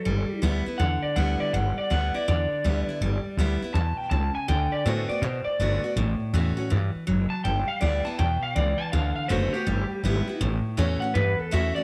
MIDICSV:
0, 0, Header, 1, 5, 480
1, 0, Start_track
1, 0, Tempo, 370142
1, 64, Time_signature, 4, 2, 24, 8
1, 15349, End_track
2, 0, Start_track
2, 0, Title_t, "Clean electric guitar"
2, 0, Program_c, 0, 27
2, 0, Note_on_c, 0, 69, 109
2, 515, Note_off_c, 0, 69, 0
2, 1010, Note_on_c, 0, 78, 105
2, 1317, Note_off_c, 0, 78, 0
2, 1329, Note_on_c, 0, 74, 84
2, 1496, Note_off_c, 0, 74, 0
2, 1503, Note_on_c, 0, 78, 94
2, 1804, Note_off_c, 0, 78, 0
2, 1816, Note_on_c, 0, 74, 96
2, 1979, Note_off_c, 0, 74, 0
2, 1990, Note_on_c, 0, 78, 97
2, 2287, Note_off_c, 0, 78, 0
2, 2307, Note_on_c, 0, 74, 96
2, 2465, Note_off_c, 0, 74, 0
2, 2473, Note_on_c, 0, 78, 95
2, 2768, Note_off_c, 0, 78, 0
2, 2788, Note_on_c, 0, 74, 93
2, 2945, Note_off_c, 0, 74, 0
2, 2960, Note_on_c, 0, 74, 118
2, 4347, Note_off_c, 0, 74, 0
2, 4849, Note_on_c, 0, 81, 105
2, 5151, Note_off_c, 0, 81, 0
2, 5151, Note_on_c, 0, 79, 100
2, 5310, Note_off_c, 0, 79, 0
2, 5315, Note_on_c, 0, 81, 109
2, 5628, Note_off_c, 0, 81, 0
2, 5639, Note_on_c, 0, 80, 104
2, 5809, Note_off_c, 0, 80, 0
2, 5818, Note_on_c, 0, 79, 97
2, 6119, Note_off_c, 0, 79, 0
2, 6123, Note_on_c, 0, 74, 108
2, 6298, Note_off_c, 0, 74, 0
2, 6298, Note_on_c, 0, 72, 100
2, 6594, Note_off_c, 0, 72, 0
2, 6599, Note_on_c, 0, 74, 103
2, 6759, Note_off_c, 0, 74, 0
2, 6759, Note_on_c, 0, 72, 105
2, 7057, Note_off_c, 0, 72, 0
2, 7062, Note_on_c, 0, 74, 113
2, 7705, Note_off_c, 0, 74, 0
2, 9466, Note_on_c, 0, 81, 116
2, 9641, Note_off_c, 0, 81, 0
2, 9649, Note_on_c, 0, 79, 97
2, 9954, Note_off_c, 0, 79, 0
2, 9955, Note_on_c, 0, 77, 102
2, 10124, Note_off_c, 0, 77, 0
2, 10130, Note_on_c, 0, 74, 94
2, 10434, Note_off_c, 0, 74, 0
2, 10439, Note_on_c, 0, 81, 107
2, 10608, Note_off_c, 0, 81, 0
2, 10614, Note_on_c, 0, 79, 100
2, 10917, Note_off_c, 0, 79, 0
2, 10927, Note_on_c, 0, 77, 105
2, 11088, Note_off_c, 0, 77, 0
2, 11093, Note_on_c, 0, 74, 99
2, 11385, Note_on_c, 0, 81, 105
2, 11396, Note_off_c, 0, 74, 0
2, 11561, Note_off_c, 0, 81, 0
2, 11569, Note_on_c, 0, 77, 83
2, 11859, Note_off_c, 0, 77, 0
2, 11875, Note_on_c, 0, 77, 97
2, 12039, Note_on_c, 0, 72, 106
2, 12046, Note_off_c, 0, 77, 0
2, 12349, Note_off_c, 0, 72, 0
2, 12353, Note_on_c, 0, 67, 103
2, 13457, Note_off_c, 0, 67, 0
2, 14267, Note_on_c, 0, 78, 102
2, 14443, Note_off_c, 0, 78, 0
2, 14445, Note_on_c, 0, 71, 110
2, 14768, Note_off_c, 0, 71, 0
2, 14768, Note_on_c, 0, 69, 102
2, 14934, Note_off_c, 0, 69, 0
2, 14945, Note_on_c, 0, 76, 99
2, 15234, Note_off_c, 0, 76, 0
2, 15239, Note_on_c, 0, 74, 122
2, 15349, Note_off_c, 0, 74, 0
2, 15349, End_track
3, 0, Start_track
3, 0, Title_t, "Steel-string acoustic guitar"
3, 0, Program_c, 1, 25
3, 69, Note_on_c, 1, 55, 94
3, 527, Note_off_c, 1, 55, 0
3, 542, Note_on_c, 1, 55, 97
3, 557, Note_on_c, 1, 59, 108
3, 566, Note_on_c, 1, 64, 103
3, 841, Note_off_c, 1, 55, 0
3, 844, Note_off_c, 1, 64, 0
3, 848, Note_off_c, 1, 59, 0
3, 860, Note_on_c, 1, 64, 66
3, 880, Note_on_c, 1, 59, 52
3, 1020, Note_off_c, 1, 64, 0
3, 1030, Note_off_c, 1, 59, 0
3, 1031, Note_on_c, 1, 50, 91
3, 1506, Note_on_c, 1, 55, 87
3, 1514, Note_on_c, 1, 59, 91
3, 1530, Note_on_c, 1, 64, 86
3, 1953, Note_off_c, 1, 50, 0
3, 1968, Note_off_c, 1, 55, 0
3, 1972, Note_off_c, 1, 59, 0
3, 1980, Note_off_c, 1, 64, 0
3, 1996, Note_on_c, 1, 55, 87
3, 2450, Note_off_c, 1, 55, 0
3, 2466, Note_on_c, 1, 55, 84
3, 2475, Note_on_c, 1, 59, 94
3, 2485, Note_on_c, 1, 64, 93
3, 2762, Note_off_c, 1, 55, 0
3, 2765, Note_off_c, 1, 64, 0
3, 2767, Note_off_c, 1, 59, 0
3, 2780, Note_on_c, 1, 64, 69
3, 2801, Note_on_c, 1, 59, 53
3, 2939, Note_off_c, 1, 64, 0
3, 2949, Note_off_c, 1, 59, 0
3, 2955, Note_on_c, 1, 50, 86
3, 3429, Note_on_c, 1, 55, 87
3, 3438, Note_on_c, 1, 59, 88
3, 3443, Note_on_c, 1, 64, 91
3, 3723, Note_off_c, 1, 55, 0
3, 3728, Note_off_c, 1, 59, 0
3, 3730, Note_off_c, 1, 64, 0
3, 3744, Note_on_c, 1, 64, 59
3, 3763, Note_on_c, 1, 59, 49
3, 3874, Note_off_c, 1, 50, 0
3, 3901, Note_off_c, 1, 64, 0
3, 3910, Note_off_c, 1, 59, 0
3, 3912, Note_on_c, 1, 55, 94
3, 4376, Note_off_c, 1, 55, 0
3, 4391, Note_on_c, 1, 55, 96
3, 4404, Note_on_c, 1, 59, 97
3, 4412, Note_on_c, 1, 64, 94
3, 4684, Note_off_c, 1, 55, 0
3, 4684, Note_off_c, 1, 64, 0
3, 4690, Note_off_c, 1, 59, 0
3, 4699, Note_on_c, 1, 64, 64
3, 4722, Note_on_c, 1, 59, 56
3, 4858, Note_off_c, 1, 64, 0
3, 4869, Note_off_c, 1, 59, 0
3, 5333, Note_on_c, 1, 49, 81
3, 5799, Note_off_c, 1, 49, 0
3, 5812, Note_on_c, 1, 50, 94
3, 6281, Note_off_c, 1, 50, 0
3, 6296, Note_on_c, 1, 50, 95
3, 6300, Note_on_c, 1, 57, 95
3, 6313, Note_on_c, 1, 59, 102
3, 6318, Note_on_c, 1, 66, 97
3, 6590, Note_off_c, 1, 66, 0
3, 6596, Note_off_c, 1, 50, 0
3, 6597, Note_off_c, 1, 57, 0
3, 6604, Note_off_c, 1, 59, 0
3, 6606, Note_on_c, 1, 66, 66
3, 6629, Note_on_c, 1, 59, 54
3, 6771, Note_off_c, 1, 66, 0
3, 6777, Note_on_c, 1, 45, 88
3, 6782, Note_off_c, 1, 59, 0
3, 7258, Note_on_c, 1, 50, 91
3, 7265, Note_on_c, 1, 57, 90
3, 7273, Note_on_c, 1, 59, 93
3, 7284, Note_on_c, 1, 66, 97
3, 7554, Note_off_c, 1, 66, 0
3, 7556, Note_off_c, 1, 50, 0
3, 7560, Note_off_c, 1, 57, 0
3, 7564, Note_off_c, 1, 59, 0
3, 7570, Note_on_c, 1, 66, 59
3, 7591, Note_on_c, 1, 59, 48
3, 7704, Note_off_c, 1, 45, 0
3, 7732, Note_off_c, 1, 66, 0
3, 7737, Note_on_c, 1, 45, 101
3, 7743, Note_off_c, 1, 59, 0
3, 8217, Note_on_c, 1, 52, 90
3, 8230, Note_on_c, 1, 57, 95
3, 8234, Note_on_c, 1, 61, 89
3, 8240, Note_on_c, 1, 66, 95
3, 8502, Note_off_c, 1, 66, 0
3, 8515, Note_off_c, 1, 52, 0
3, 8518, Note_on_c, 1, 66, 67
3, 8522, Note_off_c, 1, 57, 0
3, 8524, Note_off_c, 1, 61, 0
3, 8540, Note_on_c, 1, 61, 56
3, 8664, Note_off_c, 1, 45, 0
3, 8686, Note_off_c, 1, 66, 0
3, 8692, Note_on_c, 1, 52, 84
3, 8697, Note_off_c, 1, 61, 0
3, 9158, Note_off_c, 1, 52, 0
3, 9167, Note_on_c, 1, 54, 88
3, 9635, Note_off_c, 1, 54, 0
3, 9659, Note_on_c, 1, 55, 89
3, 10108, Note_off_c, 1, 55, 0
3, 10124, Note_on_c, 1, 55, 90
3, 10132, Note_on_c, 1, 59, 89
3, 10145, Note_on_c, 1, 64, 96
3, 10419, Note_off_c, 1, 64, 0
3, 10428, Note_off_c, 1, 55, 0
3, 10433, Note_off_c, 1, 59, 0
3, 10435, Note_on_c, 1, 64, 64
3, 10458, Note_on_c, 1, 59, 58
3, 10604, Note_off_c, 1, 64, 0
3, 10616, Note_off_c, 1, 59, 0
3, 10618, Note_on_c, 1, 47, 92
3, 11081, Note_off_c, 1, 47, 0
3, 11099, Note_on_c, 1, 52, 94
3, 11561, Note_off_c, 1, 52, 0
3, 11580, Note_on_c, 1, 50, 103
3, 12035, Note_off_c, 1, 50, 0
3, 12050, Note_on_c, 1, 50, 95
3, 12060, Note_on_c, 1, 57, 96
3, 12065, Note_on_c, 1, 59, 95
3, 12072, Note_on_c, 1, 66, 96
3, 12352, Note_off_c, 1, 50, 0
3, 12353, Note_off_c, 1, 66, 0
3, 12357, Note_off_c, 1, 57, 0
3, 12359, Note_off_c, 1, 59, 0
3, 12369, Note_on_c, 1, 66, 67
3, 12386, Note_on_c, 1, 59, 58
3, 12531, Note_off_c, 1, 66, 0
3, 12535, Note_on_c, 1, 55, 94
3, 12540, Note_off_c, 1, 59, 0
3, 12999, Note_off_c, 1, 55, 0
3, 13015, Note_on_c, 1, 55, 83
3, 13029, Note_on_c, 1, 59, 106
3, 13036, Note_on_c, 1, 64, 105
3, 13310, Note_off_c, 1, 64, 0
3, 13314, Note_off_c, 1, 55, 0
3, 13322, Note_off_c, 1, 59, 0
3, 13326, Note_on_c, 1, 64, 63
3, 13346, Note_on_c, 1, 59, 59
3, 13490, Note_off_c, 1, 64, 0
3, 13497, Note_on_c, 1, 45, 104
3, 13500, Note_off_c, 1, 59, 0
3, 13969, Note_on_c, 1, 52, 98
3, 13974, Note_on_c, 1, 57, 101
3, 13986, Note_on_c, 1, 66, 99
3, 13987, Note_on_c, 1, 61, 109
3, 14272, Note_off_c, 1, 52, 0
3, 14274, Note_off_c, 1, 57, 0
3, 14275, Note_off_c, 1, 66, 0
3, 14281, Note_off_c, 1, 61, 0
3, 14290, Note_on_c, 1, 66, 68
3, 14313, Note_on_c, 1, 61, 60
3, 14424, Note_off_c, 1, 45, 0
3, 14453, Note_off_c, 1, 66, 0
3, 14461, Note_on_c, 1, 40, 97
3, 14464, Note_off_c, 1, 61, 0
3, 14930, Note_on_c, 1, 52, 97
3, 14939, Note_on_c, 1, 57, 85
3, 14943, Note_on_c, 1, 61, 102
3, 14957, Note_on_c, 1, 66, 108
3, 15233, Note_off_c, 1, 52, 0
3, 15234, Note_off_c, 1, 66, 0
3, 15238, Note_off_c, 1, 57, 0
3, 15239, Note_off_c, 1, 61, 0
3, 15250, Note_on_c, 1, 66, 62
3, 15273, Note_on_c, 1, 61, 53
3, 15349, Note_off_c, 1, 40, 0
3, 15349, Note_off_c, 1, 61, 0
3, 15349, Note_off_c, 1, 66, 0
3, 15349, End_track
4, 0, Start_track
4, 0, Title_t, "Upright bass"
4, 0, Program_c, 2, 32
4, 74, Note_on_c, 2, 31, 95
4, 337, Note_off_c, 2, 31, 0
4, 550, Note_on_c, 2, 38, 98
4, 815, Note_off_c, 2, 38, 0
4, 1032, Note_on_c, 2, 40, 112
4, 1296, Note_off_c, 2, 40, 0
4, 1509, Note_on_c, 2, 38, 99
4, 1775, Note_off_c, 2, 38, 0
4, 1987, Note_on_c, 2, 31, 95
4, 2253, Note_off_c, 2, 31, 0
4, 2475, Note_on_c, 2, 38, 95
4, 2737, Note_off_c, 2, 38, 0
4, 2960, Note_on_c, 2, 40, 113
4, 3220, Note_off_c, 2, 40, 0
4, 3433, Note_on_c, 2, 38, 94
4, 3696, Note_off_c, 2, 38, 0
4, 3901, Note_on_c, 2, 31, 99
4, 4169, Note_off_c, 2, 31, 0
4, 4373, Note_on_c, 2, 38, 91
4, 4644, Note_off_c, 2, 38, 0
4, 4853, Note_on_c, 2, 40, 107
4, 5124, Note_off_c, 2, 40, 0
4, 5327, Note_on_c, 2, 37, 99
4, 5600, Note_off_c, 2, 37, 0
4, 5818, Note_on_c, 2, 38, 99
4, 6086, Note_off_c, 2, 38, 0
4, 6296, Note_on_c, 2, 45, 101
4, 6565, Note_off_c, 2, 45, 0
4, 6766, Note_on_c, 2, 47, 108
4, 7039, Note_off_c, 2, 47, 0
4, 7253, Note_on_c, 2, 31, 94
4, 7523, Note_off_c, 2, 31, 0
4, 7730, Note_on_c, 2, 33, 98
4, 8002, Note_off_c, 2, 33, 0
4, 8213, Note_on_c, 2, 40, 90
4, 8483, Note_off_c, 2, 40, 0
4, 8710, Note_on_c, 2, 43, 109
4, 8972, Note_off_c, 2, 43, 0
4, 9182, Note_on_c, 2, 30, 94
4, 9448, Note_off_c, 2, 30, 0
4, 9656, Note_on_c, 2, 31, 99
4, 9924, Note_off_c, 2, 31, 0
4, 10139, Note_on_c, 2, 38, 102
4, 10406, Note_off_c, 2, 38, 0
4, 10623, Note_on_c, 2, 40, 104
4, 10888, Note_off_c, 2, 40, 0
4, 11100, Note_on_c, 2, 37, 92
4, 11367, Note_off_c, 2, 37, 0
4, 11582, Note_on_c, 2, 38, 106
4, 11848, Note_off_c, 2, 38, 0
4, 12060, Note_on_c, 2, 30, 98
4, 12327, Note_off_c, 2, 30, 0
4, 12536, Note_on_c, 2, 31, 105
4, 12804, Note_off_c, 2, 31, 0
4, 13010, Note_on_c, 2, 32, 100
4, 13282, Note_off_c, 2, 32, 0
4, 13494, Note_on_c, 2, 33, 97
4, 13764, Note_off_c, 2, 33, 0
4, 13979, Note_on_c, 2, 40, 97
4, 14247, Note_off_c, 2, 40, 0
4, 14460, Note_on_c, 2, 43, 110
4, 14728, Note_off_c, 2, 43, 0
4, 14953, Note_on_c, 2, 40, 102
4, 15216, Note_off_c, 2, 40, 0
4, 15349, End_track
5, 0, Start_track
5, 0, Title_t, "Muted upright bass strokes"
5, 383, Note_on_c, 9, 29, 76
5, 512, Note_off_c, 9, 29, 0
5, 1336, Note_on_c, 9, 29, 70
5, 1466, Note_off_c, 9, 29, 0
5, 1817, Note_on_c, 9, 29, 80
5, 1946, Note_off_c, 9, 29, 0
5, 2305, Note_on_c, 9, 29, 69
5, 2435, Note_off_c, 9, 29, 0
5, 3265, Note_on_c, 9, 29, 71
5, 3394, Note_off_c, 9, 29, 0
5, 4208, Note_on_c, 9, 29, 77
5, 4338, Note_off_c, 9, 29, 0
5, 5161, Note_on_c, 9, 29, 77
5, 5291, Note_off_c, 9, 29, 0
5, 5648, Note_on_c, 9, 29, 80
5, 5778, Note_off_c, 9, 29, 0
5, 6130, Note_on_c, 9, 29, 75
5, 6259, Note_off_c, 9, 29, 0
5, 6600, Note_on_c, 9, 29, 76
5, 6729, Note_off_c, 9, 29, 0
5, 7084, Note_on_c, 9, 29, 74
5, 7214, Note_off_c, 9, 29, 0
5, 7570, Note_on_c, 9, 29, 79
5, 7700, Note_off_c, 9, 29, 0
5, 8040, Note_on_c, 9, 29, 77
5, 8170, Note_off_c, 9, 29, 0
5, 8528, Note_on_c, 9, 29, 72
5, 8657, Note_off_c, 9, 29, 0
5, 9011, Note_on_c, 9, 29, 71
5, 9141, Note_off_c, 9, 29, 0
5, 9489, Note_on_c, 9, 29, 75
5, 9619, Note_off_c, 9, 29, 0
5, 9974, Note_on_c, 9, 29, 76
5, 10103, Note_off_c, 9, 29, 0
5, 10455, Note_on_c, 9, 29, 70
5, 10584, Note_off_c, 9, 29, 0
5, 10929, Note_on_c, 9, 29, 74
5, 11058, Note_off_c, 9, 29, 0
5, 11411, Note_on_c, 9, 29, 72
5, 11541, Note_off_c, 9, 29, 0
5, 11896, Note_on_c, 9, 29, 77
5, 12025, Note_off_c, 9, 29, 0
5, 12836, Note_on_c, 9, 29, 73
5, 12966, Note_off_c, 9, 29, 0
5, 13318, Note_on_c, 9, 29, 80
5, 13447, Note_off_c, 9, 29, 0
5, 13813, Note_on_c, 9, 29, 72
5, 13942, Note_off_c, 9, 29, 0
5, 14777, Note_on_c, 9, 29, 77
5, 14907, Note_off_c, 9, 29, 0
5, 15267, Note_on_c, 9, 29, 78
5, 15349, Note_off_c, 9, 29, 0
5, 15349, End_track
0, 0, End_of_file